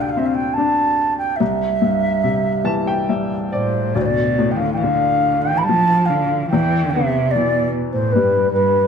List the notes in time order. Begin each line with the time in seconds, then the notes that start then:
Already playing: D2 C3 D3
0.01 G5
0.09 F5
0.17 C4 E5
0.26 F5
0.35 G5
0.54 D4 A5
1.18 G5
1.36 E5
1.40 C2
1.82 G2
2.24 C3
2.64 E3 A5
2.87 G5
3.09 G3 E5
3.51 A2 C5 D5
3.95 D2 A2 D5
4.01 A2 C5
4.06 B2 D5
4.39 A2
4.51 G5
4.56 E3 F5
4.60 D3
4.73 E3 G5
4.78 F5
4.82 D3
5.42 G5
5.47 E3
5.58 B5
5.63 G3 A5
5.68 F3
6.06 F5
6.10 D3
6.49 E2 E3 G5
6.91 C3 E5
6.95 B3
7.31 B2 D5
7.36 E3
7.92 A2 C5
8.12 G2 B4
8.16 G3
8.52 G2 B4